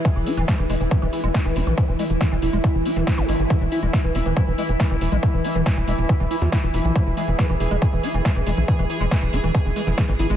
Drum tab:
HH |x-oxx-oxx-oxx-ox|x-oxx-oxx-oxx-ox|x-oxx-oxx-oxx-ox|x-oxx-oxx-oxx-ox|
SD |----o-------o---|----o------oo---|----o-------o---|----o------oo---|
BD |o---o---o---o---|o---o---o---o---|o---o---o---o---|o---o---o---o---|

HH |x-oxx-oxx-oxx-ox|x-oxx-oxx-oxx-ox|
SD |----o-------o---|----o------oo---|
BD |o---o---o---o---|o---o---o---o---|